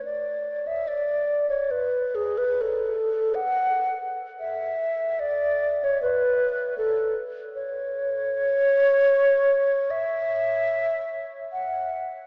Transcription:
\new Staff \with { instrumentName = "Alto flute" } { \time 3/4 \key d \lydian \tempo 4 = 75 d''8. e''16 d''8. cis''16 b'8 gis'16 b'16 | a'8. fis''4 r16 e''4 | d''8. cis''16 b'4 a'8 r8 | \key cis \minor cis''2. |
e''2 fis''4 | }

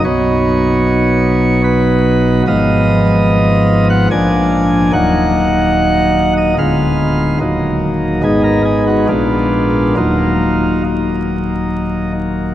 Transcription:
<<
  \new Staff \with { instrumentName = "Pipe organ" } { \time 3/4 \key ees \minor \tempo 4 = 73 des''2 b'4 | ees''4.~ ees''16 ges''16 aes''4 | ges''4.~ ges''16 ees''16 f''4 | r4 aes'16 bes'16 aes'16 ges'16 f'4 |
f'4 ees'4. r8 | }
  \new Staff \with { instrumentName = "Pipe organ" } { \clef bass \time 3/4 \key ees \minor <b,, b, fis b dis'>2. | <aes,, aes, f ces' f'>2 <bes,, bes, f bes d'>4 | <ees,, ees, ges bes ees'>2 <d,, d, aes b f'>4 | <ees,, ees, ges bes ees'>4 <aes,, aes, aes ces' ees'>4 <bes,, bes, aes ces' d'>4 |
<ees,, ees, ges bes ees'>2. | }
>>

